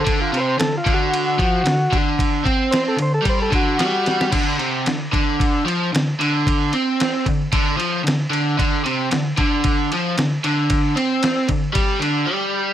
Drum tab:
CC |----------------|----------------|x---------------|----------------|
RD |x-x-x-x-x-x-x-x-|x-x-x-x-x-x-x-x-|x-x-x-x-x-x-x-x-|x-x-x-x-x-x-x-x-|
SD |----o-------o---|----o-------o-oo|----o-------o---|----o-------o---|
BD |o-----o---o---o-|o-o-----o-o-----|o-----o-o-------|o-----o-o-------|

CC |----------------|----------------|
RD |x-x-x-x-x-x-x-x-|x-x-x-x-x-x-----|
SD |----o-------o---|----o-----------|
BD |o-----o-o-------|o-----o-o-------|